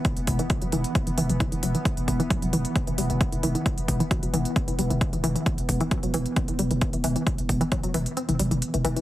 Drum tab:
HH |xxoxxxoxxxoxxxox|xxoxxxoxxxoxxxox|xxoxxxoxxxoxxxox|xxoxxxoxxxoxxxox|
BD |o-o-o---o---o---|o-o-o---o---o---|o-o-o---o---o---|o-o-o---o---o---|

HH |xxoxxxoxxxoxxxox|
BD |o-o-o-----------|